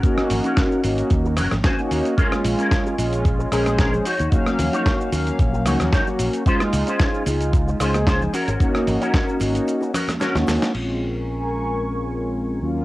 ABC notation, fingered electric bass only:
X:1
M:4/4
L:1/16
Q:"Swing 16ths" 1/4=112
K:Bbm
V:1 name="Fingered electric bass" clef=bass
z2 A,,, z3 A,,, z E,,2 G,,, A,,, z2 E,, z | z2 B,,, z3 B,,,3 z B,,,3 z2 E,, | z2 E,, z3 E,, z B,,,2 D,, E,, z2 B,,, z | z2 D,, z3 D,,3 z D,,3 z2 A,,, |
z2 A,,, z3 A,,, z6 E,, E,, z | B,,,12- B,,,2 E,,2 |]